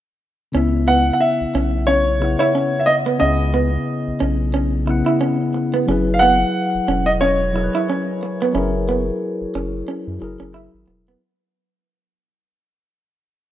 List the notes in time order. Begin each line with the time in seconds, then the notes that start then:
0.52 C#2 C#3 B3 C#4 E4
0.57 E5
0.88 B3 F#5
1.13 F#5
1.20 E5
1.41 B1
1.55 B1 C#4
1.87 C#4 C#5
2.19 C#3 B3 E4, muted clean electric guitar stroke
2.24 F#5
2.39 E4 C#5
2.55 C#4
2.80 E5
2.86 D#5, muted clean electric guitar stroke
3.06 B3
3.19 C#2 C#3 B3 C#4 E4 D#5
3.23 G#4
3.54 B3
4.08 B1
4.20 B1 C#4
4.54 C#4
4.85 C#3 B3 E4, muted clean electric guitar stroke
4.90 F#5
5.06 E4
5.21 C#4
5.54 muted clean electric guitar stroke
5.74 B3
5.86 F#1 F#3 C#4 E4 G#4
5.91 B4
6.14 F5
6.19 B3 F#5
6.75 E1
6.88 E1 C#4
7.06 D#5
7.21 C#4 C#5
7.53 F#3 E4 G#4, muted clean electric guitar stroke
7.57 A#4
7.64 B4
7.75 E4
7.90 C#4
8.23 muted clean electric guitar stroke
8.42 B3
8.53 F#1 F#3 C#4 E4 G#4
8.57 A#4
8.89 B3
9.41 F#1
9.55 F#1 C#4
9.88 C#4
10.08 F#2
10.19 F#1 F#3 E4 G#4, muted clean electric guitar stroke
10.24 A#4
10.40 F#1 C#4
10.54 E4
10.74 G#1
10.88 E1, muted clean electric guitar stroke
11.08 B3